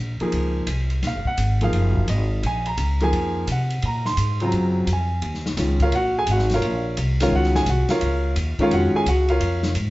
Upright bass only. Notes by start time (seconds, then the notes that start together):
Already playing: A#1
0.20 muted upright bass stroke
0.32 C#2
0.67 C2
1.02 A#1
1.14 F#1
1.26 D#1
1.38 G#1
1.73 F#1
2.08 G#1
2.43 A#1
2.77 C#2
3.12 F2
3.47 C3
3.83 A#2
4.17 G#2
4.53 F#2
4.87 F2
5.22 D#2
5.57 C#2
5.92 A#1
6.27 G#1
6.62 A#1
6.97 C2
7.31 C#2
7.66 C2
8.01 C#2
8.36 D#2
8.59 muted upright bass stroke
8.71 F2
8.93 muted upright bass stroke
9.06 C#2
9.40 F2
9.75 G#2